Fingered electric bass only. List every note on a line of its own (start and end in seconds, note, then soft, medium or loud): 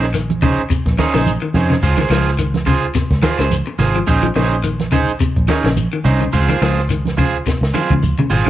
0.00 0.65 A#1 medium
0.86 0.96 A#1 medium
1.14 1.36 A#1 medium
1.54 1.77 F2 loud
1.83 2.05 C#2 medium
2.10 2.89 C#2 loud
3.10 3.21 C#2 medium
3.39 3.61 C#2 medium
3.78 4.01 G#1 medium
4.08 4.30 A#1 medium
4.36 5.15 A#1 medium
5.36 5.46 A#1 medium
5.64 5.86 A#1 medium
6.05 6.27 C2 medium
6.33 6.56 C#2 loud
6.62 7.40 C#2 medium
7.61 7.71 C#2 medium
7.90 8.12 C#2 medium
8.30 8.50 G#1 medium